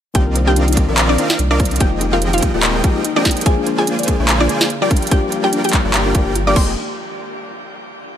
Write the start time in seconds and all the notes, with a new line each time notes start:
0.14 C2 D#3 A#3 C4 D4 F4 G4 A#4 D5 D#5 F5 G5, kick, closed hi-hat
0.27 A#4
0.36 C5, closed hi-hat
0.46 D#3 A#3 C4 D4 F4 G4 G5
0.56 D4, closed hi-hat
0.68 D#4, closed hi-hat
0.73 D#3 A#3, closed hi-hat
0.77 C4 D4 F4, kick, closed hi-hat
0.88 A#1 C4 A#4 D5 D#5 F5
0.98 clap, closed hi-hat
1.09 D4 D5
1.17 D#3 A#3 C4 D4 F4 A#4 D5 D#5 F5, closed hi-hat
1.30 D#4, snare
1.39 C2 D4, closed hi-hat
1.50 D#3 A#3 C4 D4 F4 A#4 D5 D#5 F5
1.60 kick, closed hi-hat
1.65 closed hi-hat
1.71 D4, closed hi-hat
1.76 F3, closed hi-hat
1.80 F1 F3 G#3 A#3 C4 D#4 G4 G#4 A#4 D#5 G5, kick, closed hi-hat
1.92 F4
2.01 D#4, closed hi-hat
2.12 F3 G#3 A#3 D#4 F4 G4 A#4 F5
2.22 C5, closed hi-hat
2.33 D#4 F4 F5, closed hi-hat
2.38 F3, closed hi-hat
2.42 G#3 A#3 D#4 G4, kick, closed hi-hat
2.54 D#1 F3 C4 F4 G#4 A#4 D#5 G5
2.63 D#4, clap, closed hi-hat
2.75 A#4
2.83 F3 G#3 A#3 C4 D#4 G4 G#4 A#4 D#5 G5, kick, closed hi-hat
2.96 D#4
3.05 D#4, closed hi-hat
3.15 F3 G#3 A#3 C4 D4 D#4 F4 G4 G#4 A#4 D5 D#5 G5
3.25 D#4, kick, snare, closed hi-hat
3.31 closed hi-hat
3.37 A#4, closed hi-hat
3.41 F3, closed hi-hat
3.46 D3 G#3 A#3 D4 F4 G#4 C5 D5 F5 G#5, kick, closed hi-hat
3.57 D4
3.67 D4, closed hi-hat
3.77 F3 G#3 A#3 D4 F4 G#4 G#5
3.87 D4, closed hi-hat
3.99 D5, closed hi-hat
4.03 F3, closed hi-hat
4.07 G#3 A#3 D4 G#4 F5, kick, closed hi-hat
4.20 A#1 A#3 D4 F4 C5 D5 G#5
4.29 D4, clap, closed hi-hat
4.40 D4 F4 D5
4.48 F3 G#3 A#3 D4 F4 G#4 C5 D5 G#5, closed hi-hat
4.61 D5, snare
4.70 F5, closed hi-hat
4.81 F3 G3 A#3 D4 F4 G4 A#4 D5 G5
4.91 F3 A#3 D4 G4, kick, closed hi-hat
4.97 closed hi-hat
5.02 F4, closed hi-hat
5.07 F3, closed hi-hat
5.11 G3 A#3 D4 F4 G4 A#4 D5 G5, kick, closed hi-hat
5.23 D5
5.32 F5, closed hi-hat
5.43 F3 G3 A#3 D4 G4 G5
5.53 D4, closed hi-hat
5.64 F4 G4 G5, closed hi-hat
5.69 F3, closed hi-hat
5.73 G3 A#3 D4 G4, kick, clap, closed hi-hat
5.85 G1 G3 F4 A#4 D5 G5
5.94 F5, clap, closed hi-hat
6.06 D4
6.14 G1 F3 G3 A#3 D4 F4 G4 A#4 D5 G5, kick, closed hi-hat
6.26 G1 G4
6.35 F4, closed hi-hat
6.46 F3 G3 A#3 D4 F4 G4 A#4 D5 G5 D6
6.53 F1 F3 G#3 A#3 C4 G#4 A#4 D#5 G5 C6, kick, crash
6.58 D#4 G4